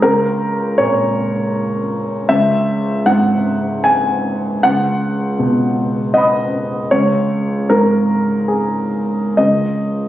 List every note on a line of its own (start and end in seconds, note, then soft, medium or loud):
0.02 2.26 C#2 medium
0.02 0.78 A#4 medium
0.78 2.31 A#2 soft
0.78 1.92 C#5 medium
2.29 4.57 C#2 medium
2.29 3.06 E5 medium
3.06 4.61 G#2 soft
3.06 3.84 F#5 medium
3.84 4.61 G#5 medium
4.63 6.89 C#2 soft
4.63 6.12 F#5 medium
5.39 6.92 B2 soft
6.14 6.91 D#5 medium
6.14 6.87 F#5 soft
6.14 6.89 B5 soft
6.21 6.91 D#6 soft
6.91 9.35 C#2 medium
6.91 7.69 C#5 medium
7.70 9.39 G#2 soft
7.70 8.50 A#4 medium
8.48 9.38 G#4 soft
9.37 10.08 C#2 soft
9.37 10.08 D#5 medium